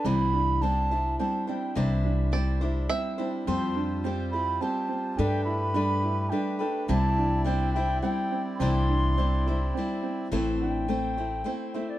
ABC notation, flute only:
X:1
M:3/4
L:1/16
Q:1/4=105
K:C
V:1 name="Flute"
b4 a4 a2 g2 | e4 z8 | c'4 z2 b2 a4 | g2 b6 g2 g2 |
a4 g2 g2 g3- g/2 b/2 | c'8 z4 | z2 g8 e d |]